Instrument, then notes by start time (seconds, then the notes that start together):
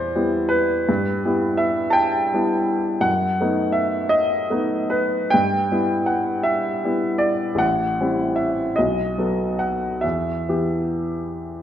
grand piano
Already playing: E2 G3 B3 E4 C5 D5 E5
0.15 G3 B3 E4
0.49 B4
0.89 G2
1.25 G3 B3 E4
1.57 E5
1.90 G5 A5
2.34 G3 B3 E4
3.01 F#2 F#5
3.41 A3 B3 D#4
3.72 E5
4.09 D#5
4.50 A3 B3 D#4
4.90 B4
5.30 G2 G5
5.72 G3 B3 E4
6.06 F#5
6.43 E5
6.84 G3 B3 E4
7.18 D5
7.55 A1 F#5
8.00 G3 C4 E4
8.36 E5
8.76 B1 D#5
9.18 F#3 B3 A4
9.59 F#5
10.01 E2 E5
10.48 E3 B3 G4